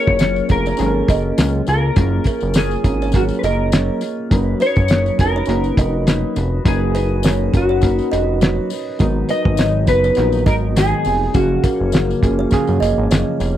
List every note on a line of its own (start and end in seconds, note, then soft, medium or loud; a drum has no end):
0.00 0.21 A#3 soft
0.00 0.21 C#4 medium
0.00 0.40 C#4 medium
0.00 0.20 F4 medium
0.00 0.40 F4 medium
0.00 0.41 G#4 medium
0.00 0.41 A#4 loud
0.00 0.51 C#5 loud
0.07 0.42 F#1 medium
0.07 kick loud
0.19 0.50 F#3 medium
0.19 0.51 A#3 medium
0.19 0.51 C#4 medium
0.19 0.49 F4 medium
0.19 0.36 C#5 medium
0.19 snare loud
0.19 closed hi-hat medium
0.19 tambourine medium
0.36 tambourine soft
0.49 0.73 F1 medium
0.49 0.76 C#4 medium
0.49 0.80 C#4 soft
0.49 0.76 F4 medium
0.49 0.80 F4 medium
0.49 0.76 G#4 medium
0.49 0.77 A#4 medium
0.49 1.68 A#4 loud
0.49 kick medium
0.49 closed hi-hat medium
0.49 tambourine soft
0.53 0.79 A#3 soft
0.66 0.95 C#5 medium
0.66 tambourine soft
0.77 1.03 G#1 loud
0.77 1.09 F#3 medium
0.77 1.09 A#3 medium
0.77 1.83 C#4 medium
0.77 1.84 F4 medium
0.77 1.84 G#4 medium
0.77 0.87 A4 medium
0.77 snare soft
0.77 closed hi-hat medium
0.77 tambourine medium
0.82 1.10 C#4 medium
0.82 1.09 F4 medium
0.86 1.88 A#4 medium
1.08 1.32 F#1 loud
1.08 1.38 C#4 medium
1.08 1.39 F4 medium
1.08 1.25 D#5 medium
1.08 kick medium
1.08 closed hi-hat medium
1.08 tambourine medium
1.12 1.38 A#3 soft
1.38 1.62 C#2 loud
1.38 1.68 F#3 medium
1.38 1.68 A#3 medium
1.38 1.68 C#4 loud
1.38 1.66 F4 loud
1.38 snare loud
1.38 closed hi-hat loud
1.38 tambourine medium
1.67 1.91 C#2 loud
1.67 1.97 A#3 soft
1.67 1.98 C#4 soft
1.67 1.97 F4 medium
1.67 2.59 A#4 medium
1.67 closed hi-hat medium
1.67 tambourine medium
1.95 2.20 F#1 loud
1.95 2.26 F#3 medium
1.95 2.27 A#3 medium
1.95 2.75 C#4 medium
1.95 2.27 C#4 medium
1.95 2.75 F4 medium
1.95 2.27 F4 medium
1.95 2.76 G#4 medium
1.95 2.76 A#4 medium
1.95 kick loud
1.95 closed hi-hat loud
1.95 tambourine soft
2.24 2.56 F4 medium
2.24 2.42 A#4 medium
2.24 kick medium
2.24 closed hi-hat medium
2.24 tambourine soft
2.29 2.56 A#3 medium
2.29 2.57 C#4 medium
2.40 2.76 F#1 loud
2.40 tambourine soft
2.54 2.85 F#3 medium
2.54 2.86 A#3 medium
2.54 3.16 G#4 medium
2.54 2.71 C#5 medium
2.54 snare loud
2.54 closed hi-hat medium
2.54 tambourine medium
2.58 2.86 C#4 medium
2.58 2.85 F4 medium
2.71 tambourine soft
2.83 3.31 G#1 medium
2.83 3.10 C#4 medium
2.83 3.15 C#4 soft
2.83 3.10 F4 medium
2.83 3.15 F4 soft
2.83 3.11 G#4 medium
2.83 3.11 A#4 medium
2.83 kick medium
2.83 closed hi-hat medium
2.83 tambourine soft
2.88 3.14 A#3 soft
3.02 3.29 C#5 medium
3.02 tambourine soft
3.12 3.44 F#3 medium
3.12 3.44 A#3 medium
3.12 4.18 C#4 medium
3.12 4.18 F4 medium
3.12 4.19 G#4 medium
3.12 4.19 A#4 medium
3.12 kick medium
3.12 snare soft
3.12 closed hi-hat medium
3.12 tambourine medium
3.16 3.44 C#4 medium
3.16 3.43 F4 medium
3.16 3.22 F#4 medium
3.29 tambourine soft
3.39 3.44 B4 medium
3.43 3.90 F#1 medium
3.43 3.73 A#3 soft
3.43 3.73 C#4 soft
3.43 3.73 F4 medium
3.43 3.99 A#4 medium
3.43 3.59 D#5 medium
3.43 closed hi-hat medium
3.43 tambourine medium
3.72 4.02 F#3 medium
3.72 4.03 A#3 medium
3.72 4.03 C#4 medium
3.72 4.01 F4 medium
3.72 4.16 C#5 medium
3.72 snare loud
3.72 closed hi-hat medium
3.72 tambourine medium
4.01 4.32 C#4 soft
4.01 4.32 F4 medium
4.01 closed hi-hat medium
4.01 tambourine medium
4.05 4.32 A#3 soft
4.30 4.55 F#1 loud
4.30 4.61 F#3 medium
4.30 4.61 A#3 loud
4.30 5.09 C#4 medium
4.30 4.38 D4 medium
4.30 4.62 D#4 medium
4.30 5.10 F#4 medium
4.30 4.61 F#4 medium
4.30 5.10 A#4 medium
4.30 kick loud
4.30 closed hi-hat medium
4.30 tambourine soft
4.34 5.13 D#4 medium
4.34 4.59 B4 loud
4.60 4.90 D#4 soft
4.60 4.90 F#4 medium
4.60 4.76 B4 medium
4.60 4.90 B4 medium
4.60 5.20 C#5 loud
4.60 closed hi-hat medium
4.60 tambourine medium
4.76 5.11 F#1 loud
4.76 kick loud
4.76 tambourine soft
4.88 5.19 F#3 medium
4.88 5.20 A#3 medium
4.88 5.20 D#4 medium
4.88 5.20 F#4 medium
4.88 5.19 B4 medium
4.88 5.05 C#5 medium
4.88 snare loud
4.88 closed hi-hat medium
4.88 tambourine medium
5.06 tambourine soft
5.18 5.43 F1 medium
5.18 5.45 C#4 medium
5.18 5.45 D#4 medium
5.18 5.46 F#4 medium
5.18 5.49 F#4 soft
5.18 5.46 A#4 medium
5.18 6.63 A#4 loud
5.18 5.49 B4 soft
5.18 kick medium
5.18 closed hi-hat medium
5.18 tambourine medium
5.23 5.49 D#4 soft
5.36 5.64 C#5 medium
5.46 5.72 F#1 medium
5.46 5.78 A#3 medium
5.46 6.53 C#4 medium
5.46 6.53 D#4 medium
5.46 6.54 F#4 medium
5.46 closed hi-hat medium
5.46 tambourine medium
5.50 5.79 D#4 medium
5.50 5.79 F#4 medium
5.50 6.54 A#4 medium
5.50 5.77 B4 medium
5.64 tambourine soft
5.77 6.25 F1 loud
5.77 6.07 D#4 medium
5.77 6.07 F#4 medium
5.77 6.07 B4 medium
5.77 5.94 D#5 medium
5.77 kick medium
5.77 closed hi-hat medium
5.77 tambourine medium
6.07 6.36 F#3 medium
6.07 6.37 A#3 medium
6.07 6.37 D#4 loud
6.07 6.36 F#4 medium
6.07 6.35 B4 loud
6.07 snare loud
6.07 closed hi-hat medium
6.07 tambourine medium
6.36 6.60 F1 loud
6.36 6.64 D#4 soft
6.36 6.64 F#4 medium
6.36 6.65 B4 medium
6.36 closed hi-hat medium
6.36 tambourine medium
6.64 7.50 F#1 loud
6.64 6.94 F#3 medium
6.64 6.95 A#3 medium
6.64 7.44 C#4 medium
6.64 6.95 D#4 medium
6.64 7.44 D#4 medium
6.64 6.95 F#4 medium
6.64 7.45 F#4 medium
6.64 7.56 G#4 medium
6.64 7.45 A#4 medium
6.64 6.93 B4 medium
6.64 kick loud
6.64 closed hi-hat medium
6.64 tambourine soft
6.95 7.24 D#4 medium
6.95 7.24 F#4 medium
6.95 7.24 B4 medium
6.95 7.10 B4 medium
6.95 closed hi-hat medium
6.95 tambourine soft
7.23 7.53 F#3 medium
7.23 7.53 A#3 medium
7.23 7.54 D#4 medium
7.23 7.54 F#4 medium
7.23 7.53 B4 medium
7.23 7.40 C#5 medium
7.23 snare loud
7.23 closed hi-hat medium
7.23 tambourine medium
7.53 8.00 F#1 medium
7.53 7.79 C#4 medium
7.53 7.80 D#4 medium
7.53 7.80 F#4 medium
7.53 7.83 F#4 soft
7.53 7.80 A#4 medium
7.53 7.83 B4 soft
7.53 kick medium
7.53 closed hi-hat medium
7.53 tambourine soft
7.57 7.82 D#4 soft
7.57 8.68 F#4 medium
7.69 7.97 C#5 medium
7.82 8.12 A#3 medium
7.82 8.87 C#4 medium
7.82 8.87 D#4 medium
7.82 8.12 D#4 medium
7.82 8.88 F#4 medium
7.82 8.12 F#4 medium
7.82 8.88 A#4 medium
7.82 8.10 B4 medium
7.82 kick medium
7.82 closed hi-hat medium
7.82 tambourine medium
7.99 tambourine soft
8.11 8.60 F1 loud
8.11 8.41 D#4 soft
8.11 8.41 F#4 medium
8.11 8.41 B4 medium
8.11 8.27 D#5 medium
8.11 closed hi-hat medium
8.11 tambourine medium
8.41 8.71 F#3 medium
8.41 8.71 A#3 medium
8.41 8.71 D#4 medium
8.41 8.71 F#4 loud
8.41 8.70 B4 loud
8.41 8.85 C#5 medium
8.41 snare loud
8.41 closed hi-hat medium
8.41 tambourine medium
8.70 9.01 D#4 soft
8.70 9.01 F#4 medium
8.70 9.00 B4 medium
8.70 open hi-hat soft
8.70 tambourine medium
8.99 9.24 G#1 loud
8.99 9.30 G#2 medium
8.99 9.30 D#3 medium
8.99 9.30 F#3 medium
8.99 9.78 B3 medium
8.99 9.30 B3 loud
8.99 9.79 D#4 medium
8.99 9.29 D#4 loud
8.99 9.79 F#4 medium
8.99 9.79 A#4 medium
8.99 kick loud
8.99 closed hi-hat medium
8.99 tambourine soft
9.29 9.58 F#3 medium
9.29 9.59 B3 medium
9.29 9.59 D#4 medium
9.29 9.45 B4 medium
9.29 9.88 D#5 loud
9.29 closed hi-hat medium
9.29 tambourine soft
9.45 9.89 G#1 medium
9.45 kick loud
9.57 9.88 G#2 medium
9.57 9.88 D#3 medium
9.57 9.88 F#3 medium
9.57 9.88 B3 medium
9.57 9.87 D#4 medium
9.57 9.74 C#5 medium
9.57 snare loud
9.57 closed hi-hat medium
9.57 tambourine medium
9.87 10.11 F#1 loud
9.87 10.16 F#3 soft
9.87 10.14 B3 medium
9.87 10.17 B3 soft
9.87 10.17 D#4 soft
9.87 10.14 D#4 medium
9.87 10.15 F#4 medium
9.87 10.15 A#4 medium
9.87 10.43 B4 loud
9.87 kick medium
9.87 closed hi-hat medium
9.87 tambourine soft
10.04 10.32 C#5 medium
10.04 tambourine soft
10.15 10.48 A#1 medium
10.15 10.46 D#3 medium
10.15 10.46 F#3 medium
10.15 11.21 B3 medium
10.15 10.46 B3 medium
10.15 11.22 D#4 medium
10.15 10.45 D#4 medium
10.15 11.22 F#4 medium
10.15 11.23 A#4 medium
10.15 snare soft
10.15 closed hi-hat medium
10.15 tambourine medium
10.32 tambourine soft
10.46 10.94 G#1 medium
10.46 10.75 F#3 soft
10.46 10.76 B3 medium
10.46 10.76 D#4 medium
10.46 10.55 A#4 medium
10.46 10.62 D#5 medium
10.46 kick loud
10.46 closed hi-hat medium
10.46 tambourine medium
10.76 11.05 G#2 medium
10.76 11.05 D#3 medium
10.76 11.06 F#3 medium
10.76 11.06 B3 medium
10.76 11.04 D#4 medium
10.76 11.37 G#4 loud
10.76 snare loud
10.76 closed hi-hat medium
10.76 tambourine medium
11.05 11.29 F1 medium
11.05 11.35 F#3 soft
11.05 11.35 B3 soft
11.05 11.35 D#4 medium
11.05 open hi-hat soft
11.05 tambourine medium
11.33 11.58 F#1 loud
11.33 11.64 F#2 medium
11.33 11.64 C#3 medium
11.33 11.64 F3 medium
11.33 12.12 A#3 medium
11.33 11.64 A#3 medium
11.33 12.13 C#4 medium
11.33 11.63 C#4 medium
11.33 13.07 F#4 medium
11.33 12.13 G#4 medium
11.33 12.13 F5 medium
11.33 kick loud
11.33 closed hi-hat loud
11.33 tambourine soft
11.64 11.93 F3 soft
11.64 11.93 A#3 soft
11.64 11.93 C#4 medium
11.64 11.79 A#4 medium
11.64 kick medium
11.64 closed hi-hat medium
11.64 tambourine medium
11.80 12.14 F#1 medium
11.92 12.22 F#2 medium
11.92 12.23 C#3 medium
11.92 12.23 F3 medium
11.92 12.23 A#3 medium
11.92 12.22 C#4 medium
11.92 12.09 C#5 medium
11.92 snare loud
11.92 closed hi-hat medium
11.92 tambourine medium
12.10 tambourine soft
12.21 12.46 F#1 medium
12.21 12.48 A#3 medium
12.21 12.53 A#3 medium
12.21 12.49 C#4 medium
12.21 12.52 C#4 medium
12.21 12.49 F4 medium
12.21 12.49 G#4 medium
12.21 kick medium
12.21 closed hi-hat medium
12.21 tambourine soft
12.26 12.52 F3 soft
12.39 12.67 C#5 medium
12.51 12.81 C#3 medium
12.51 12.82 F3 medium
12.51 13.56 A#3 medium
12.51 12.81 A#3 medium
12.51 13.56 C#4 medium
12.51 12.80 C#4 medium
12.51 13.57 G#4 loud
12.51 13.57 F5 medium
12.51 kick medium
12.51 snare soft
12.51 closed hi-hat medium
12.51 tambourine medium
12.67 12.79 F#2 medium
12.67 tambourine soft
12.80 12.94 F#1 medium
12.80 13.11 F3 medium
12.80 13.11 A#3 medium
12.80 13.10 C#4 medium
12.80 12.96 D#5 medium
12.80 closed hi-hat medium
12.80 tambourine medium
12.98 13.08 G#1 loud
13.11 13.24 F#1 loud
13.11 13.40 F#2 medium
13.11 13.40 C#3 medium
13.11 13.41 F3 medium
13.11 13.41 A#3 medium
13.11 13.39 C#4 medium
13.11 13.53 C#5 medium
13.11 snare loud
13.11 closed hi-hat medium
13.11 tambourine medium
13.40 13.57 F1 loud
13.40 13.57 F3 soft
13.40 13.57 A#3 soft
13.40 13.57 C#4 medium
13.40 closed hi-hat medium
13.40 tambourine medium